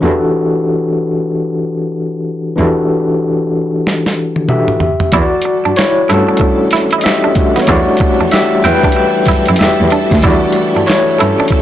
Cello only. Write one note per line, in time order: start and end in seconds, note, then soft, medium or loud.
0.03 0.11 E2 medium
2.59 2.67 E2 medium
5.13 5.21 E2 loud
5.66 5.70 G2 soft
6.10 6.18 G2 medium
7.69 7.77 E2 loud
8.20 8.24 E2 soft
8.65 8.73 E2 medium
9.28 9.34 F#2 soft
9.49 9.57 F#2 medium
9.61 9.67 E2 medium
9.81 9.89 E2 medium
10.12 10.20 D2 medium
10.24 10.32 E2 medium
10.76 10.80 G2 soft
11.21 11.29 G2 medium